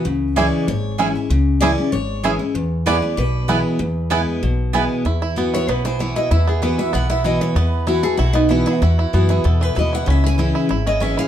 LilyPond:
<<
  \new Staff \with { instrumentName = "Steel-string acoustic guitar" } { \time 4/4 \key e \major \tempo 4 = 191 r4 d''4 cis''4. r8 | r4 d''4 cis''4. r8 | r4 d''4 b'4. r8 | r1 |
r4. cis''8 b'8 c''8 cis''8 dis''8 | e''8 gis'8 b'8 e''8 fis''8 e''8 dis''8 cis''8 | b'4. gis'8 fis'8 dis'8 e'8 fis'8 | fis'4. gis'8 a'8 b'8 dis''8 fis''8 |
e''8 gis''8 r4. dis''8 e''8 f''8 | }
  \new Staff \with { instrumentName = "Mandolin" } { \time 4/4 \key e \major r4 <cis' gis' e'' gis''>8 r4. <cis' gis' e'' gis''>8 r8 | r4 <cis' gis' e'' gis''>8 r4. <cis' gis' e'' gis''>8 r8 | r4 <b e' b' gis''>8 r4. <b e' b' gis''>8 r8 | r4 <b e' b' gis''>8 r4. <b e' b' gis''>8 r8 |
r1 | r1 | r1 | r1 |
r1 | }
  \new Staff \with { instrumentName = "Five-string banjo" } { \time 4/4 \key e \major r4 <cis' e'>8 r4. <cis' e'>8 r8 | r4 <cis' e'>8 r4. <cis' e'>8 r8 | r4 <b e'>8 r4. <b e'>8 r8 | r4 <b e'>8 r4. <b e'>8 r8 |
e'8 e'8 b8 e'8 b8 e8 e'8 e'8 | e'8 b8 e8 e'8 b8 e'8 e'8 b8 | b4 e'8 a'8 e'8 b8 e'8 e'8 | e'8 e'8 b8 e'8 b8 e8 e'8 e'8 |
cis'8 e'8 e'8 e'8 e'8 cis'8 cis'8 e'8 | }
  \new Staff \with { instrumentName = "Steel-string acoustic guitar" } { \time 4/4 \key e \major << { r4 <e gis cis' e'>4 r4 <e gis cis' e'>8 <cis' e'>8 | r4 <e gis cis' e'>8 <cis' e'>8 r4 <e gis cis' e'>8 <cis' e'>8 | r4 <e gis b e'>8 <b e'>8 r4 <e gis b e'>4 | r4 <e gis b e'>4 r4 <e gis b e'>4 |
r4 <e b e' fis'>4 r4 <e b e' fis'>8 <e' fis'>8 | r4 <e b e' fis'>8 <e' fis'>8 r4 <e b e' fis'>4 | r4 <e b e' fis'>8 <e' fis'>8 r4 <e b e' fis'>4 | r4 <e b e' fis'>4 r4 <e b e' fis'>4 |
r4 <e gis cis' e'>4 r4 <e gis cis' e'>4 | } \\ { cis2 gis,2 | cis2 gis,2 | e,2 b,2 | e,2 b,2 |
e,2 b,2 | e,2 b,2 | e,2 b,2 | e,2 b,2 |
cis2 gis,2 | } >> }
  \new Staff \with { instrumentName = "Upright bass" } { \clef bass \time 4/4 \key e \major cis,2 gis,,2 | cis,2 gis,,2 | e,2 b,,2 | e,2 b,,2 |
e,2 b,,2 | e,2 b,,2 | e,2 b,,2 | e,4 fis,4 e,4 dis,4 |
cis,2 gis,,2 | }
>>